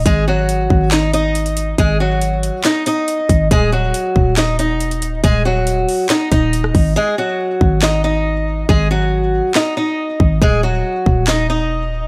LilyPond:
<<
  \new Staff \with { instrumentName = "Steel-string acoustic guitar" } { \time 4/4 \key dis \phrygian \tempo 4 = 139 <gis gis'>8 <fis fis'>4. <dis' dis''>8 <dis' dis''>4. | <gis gis'>8 <fis fis'>4. <dis' dis''>8 <dis' dis''>4. | <gis gis'>8 <fis fis'>4. <dis' dis''>8 <dis' dis''>4. | <gis gis'>8 <fis fis'>4. <dis' dis''>8 <dis' dis''>4. |
<gis gis'>8 <fis fis'>4. <dis' dis''>8 <dis' dis''>4. | <gis gis'>8 <fis fis'>4. <dis' dis''>8 <dis' dis''>4. | <gis gis'>8 <fis fis'>4. <dis' dis''>8 <dis' dis''>4. | }
  \new Staff \with { instrumentName = "808-style bass" } { \clef bass \time 4/4 \key dis \phrygian gis,,4. gis,,2~ gis,,8 | gis,,4.~ gis,,16 r4. r16 gis,,8 | dis,,4 r8 dis,,4~ dis,,16 e,,8~ e,,32 dis,,8~ dis,,32 | dis,,4. r4 dis,,4 gis,,8 |
r4. gis,,2~ gis,,8 | gis,,4.~ gis,,16 r4. r16 gis,,8 | dis,,4 r8 dis,,4~ dis,,16 e,,8~ e,,32 dis,,8~ dis,,32 | }
  \new DrumStaff \with { instrumentName = "Drums" } \drummode { \time 4/4 <hh bd>4 hh8 bd8 <hc hh sn>8 hh8 hh16 hh16 hh8 | <hh bd>4 hh8 hh8 <hc hh sn>8 hh8 hh8 <hh bd>8 | <hh bd>4 hh8 bd8 <hc hh sn>8 hh8 hh16 hh16 hh8 | <hh bd>4 hh8 hho8 <hc hh sn>8 <hh bd>8 hh16 ss16 <hho bd>8 |
r4 r8 bd8 <hc sn>4 r4 | bd4 r4 <hc sn>4 r8 bd8 | bd4 r8 bd8 <hc sn>4 r4 | }
>>